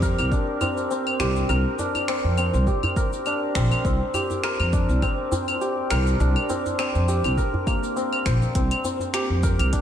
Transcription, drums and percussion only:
0.02 kick, shaker
0.19 djembe slap, djembe tone, claves, shaker
0.32 kick, shaker
0.61 djembe slap, djembe tone, djembe bass, claves, shaker
0.77 shaker
0.91 shaker
1.07 claves
1.20 finger snap, djembe slap, shaker
1.36 djembe slap, shaker
1.49 claves, shaker
1.79 djembe tone, shaker
1.95 djembe slap, djembe tone, claves, shaker
2.08 finger snap, shaker
2.38 claves, shaker
2.53 djembe slap, djembe tone, shaker
2.67 kick, shaker
2.83 djembe slap, djembe bass, claves
2.97 kick, shaker
3.13 shaker
3.26 claves, shaker
3.55 finger snap, kick, shaker
3.71 djembe slap, claves, shaker
3.85 kick, shaker
4.14 djembe tone, claves, shaker
4.30 djembe slap, djembe tone, shaker
4.44 finger snap, shaker
4.60 claves
4.73 kick, shaker
4.89 djembe slap, djembe tone, shaker
5.02 kick, claves, shaker
5.32 djembe slap, djembe tone, djembe bass, shaker
5.48 claves, shaker
5.61 shaker
5.90 finger snap, djembe slap, claves, shaker
6.07 djembe slap, shaker
6.20 shaker
6.36 claves
6.49 djembe tone, shaker
6.66 djembe slap, djembe tone, shaker
6.79 finger snap, claves, shaker
6.95 shaker
7.08 shaker
7.24 djembe slap, djembe tone, claves, shaker
7.38 kick, shaker
7.54 djembe slap, djembe bass
7.67 kick, claves, shaker
7.83 shaker
7.97 shaker
8.13 claves
8.26 finger snap, kick, shaker
8.42 djembe slap, shaker
8.55 kick, closed hi-hat, shaker
8.71 closed hi-hat, claves
8.84 djembe tone, shaker
9.00 djembe slap, djembe tone, shaker
9.14 finger snap, closed hi-hat, claves, shaker
9.43 kick, shaker
9.59 closed hi-hat, djembe slap, djembe tone, claves, shaker
9.73 kick, closed hi-hat, shaker

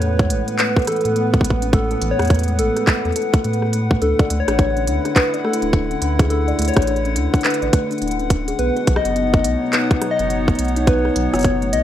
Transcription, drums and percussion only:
0.02 closed hi-hat
0.19 kick, closed hi-hat
0.30 closed hi-hat
0.48 closed hi-hat
0.59 clap, closed hi-hat
0.76 kick, closed hi-hat
0.79 closed hi-hat
0.82 closed hi-hat
0.85 cross-stick, closed hi-hat
0.87 closed hi-hat
0.92 closed hi-hat
0.96 closed hi-hat
1.01 closed hi-hat
1.05 closed hi-hat
1.16 closed hi-hat
1.34 kick, closed hi-hat
1.41 kick, closed hi-hat
1.50 kick
1.62 closed hi-hat
1.73 kick, closed hi-hat
1.91 closed hi-hat
2.02 closed hi-hat
2.19 cross-stick, closed hi-hat
2.22 closed hi-hat
2.25 closed hi-hat
2.27 closed hi-hat
2.30 kick, closed hi-hat
2.35 closed hi-hat
2.39 closed hi-hat
2.43 closed hi-hat
2.48 closed hi-hat
2.59 closed hi-hat
2.77 cross-stick, closed hi-hat
2.87 kick, clap, closed hi-hat
3.05 closed hi-hat
3.12 closed hi-hat
3.16 closed hi-hat
3.22 closed hi-hat
3.34 kick, closed hi-hat
3.44 closed hi-hat
3.53 closed hi-hat
3.62 cross-stick
3.73 closed hi-hat
3.91 kick
4.02 closed hi-hat
4.19 kick, closed hi-hat
4.30 closed hi-hat
4.48 cross-stick, closed hi-hat
4.59 kick, closed hi-hat
4.77 closed hi-hat
4.87 closed hi-hat
5.05 cross-stick, closed hi-hat
5.16 kick, clap, closed hi-hat
5.34 closed hi-hat
5.45 cross-stick
5.53 closed hi-hat
5.62 closed hi-hat
5.73 kick, closed hi-hat
5.91 closed hi-hat
6.02 closed hi-hat
6.19 kick, closed hi-hat
6.30 closed hi-hat
6.48 closed hi-hat
6.59 closed hi-hat
6.62 closed hi-hat
6.68 closed hi-hat
6.74 kick, cross-stick, closed hi-hat
6.77 closed hi-hat
6.82 closed hi-hat
6.87 closed hi-hat
6.96 closed hi-hat
7.05 closed hi-hat
7.16 closed hi-hat
7.34 kick, closed hi-hat
7.41 clap, closed hi-hat
7.44 closed hi-hat
7.50 closed hi-hat
7.54 closed hi-hat
7.62 closed hi-hat
7.73 kick, closed hi-hat
7.91 closed hi-hat
7.98 closed hi-hat
8.02 closed hi-hat
8.08 closed hi-hat
8.11 closed hi-hat
8.19 closed hi-hat
8.30 kick, closed hi-hat
8.48 closed hi-hat
8.59 closed hi-hat
8.77 closed hi-hat
8.87 kick, closed hi-hat
8.96 cross-stick
9.05 closed hi-hat
9.16 closed hi-hat
9.34 kick, closed hi-hat
9.44 closed hi-hat
9.73 cross-stick, clap, closed hi-hat
9.91 kick, closed hi-hat
10.02 cross-stick, closed hi-hat
10.19 closed hi-hat
10.30 closed hi-hat
10.48 kick, closed hi-hat
10.55 closed hi-hat
10.59 closed hi-hat
10.65 closed hi-hat
10.68 closed hi-hat
10.76 closed hi-hat
10.87 kick, closed hi-hat
11.05 cross-stick
11.16 closed hi-hat
11.34 cross-stick, closed hi-hat
11.35 closed hi-hat
11.39 closed hi-hat
11.41 closed hi-hat
11.43 closed hi-hat
11.44 kick, closed hi-hat
11.62 closed hi-hat
11.73 closed hi-hat

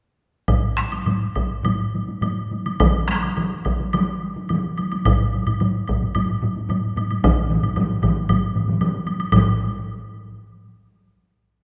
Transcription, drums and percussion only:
0.48 taiko, taiko low-mid, taiko high, high woodblock
0.77 taiko rim, taiko high
0.92 taiko high, high woodblock
1.06 taiko low-mid, taiko high, high woodblock
1.35 taiko, taiko high, high woodblock
1.63 taiko low-mid, taiko high, high woodblock
1.95 taiko high
2.08 taiko high
2.22 taiko low-mid, taiko high, high woodblock
2.51 taiko high
2.66 taiko high, high woodblock
2.80 taiko, taiko mid, taiko high, high woodblock
3.08 taiko rim, taiko high
3.22 taiko high, high woodblock
3.37 taiko mid, taiko high, high woodblock
3.65 taiko, taiko high, high woodblock
3.80 taiko high
3.93 taiko mid, taiko high, high woodblock
4.36 taiko high
4.49 taiko mid, taiko high, high woodblock
4.78 taiko high, high woodblock
4.92 taiko high, high woodblock
5.05 taiko, taiko low-mid, taiko high, high woodblock
5.34 taiko high
5.47 taiko low-mid, taiko high, high woodblock
5.60 taiko low-mid, taiko high, high woodblock
5.88 taiko, taiko low-mid, taiko high, high woodblock
6.02 taiko low-mid, taiko high
6.15 taiko low-mid, taiko high, high woodblock
6.29 taiko low-mid
6.42 taiko low-mid, taiko high
6.56 taiko high
6.69 taiko low-mid, taiko high, high woodblock
6.96 taiko low-mid, taiko high, high woodblock
7.11 taiko high, high woodblock
7.24 taiko, taiko low-mid, taiko mid, taiko high, high woodblock
7.50 taiko low-mid, taiko mid, taiko high
7.63 taiko low-mid, taiko mid, taiko high, high woodblock
7.76 taiko low-mid, taiko mid, taiko high, high woodblock
8.02 taiko, taiko low-mid, taiko mid, taiko high, high woodblock
8.17 taiko high
8.29 taiko, taiko low-mid, taiko mid, taiko high, high woodblock
8.55 taiko low-mid, taiko mid, taiko high
8.68 taiko low-mid, taiko mid, taiko high
8.81 taiko low-mid, taiko mid, taiko high, high woodblock
9.07 taiko high, high woodblock
9.20 taiko high, high woodblock
9.32 taiko, taiko low-mid, taiko mid, taiko high, high woodblock

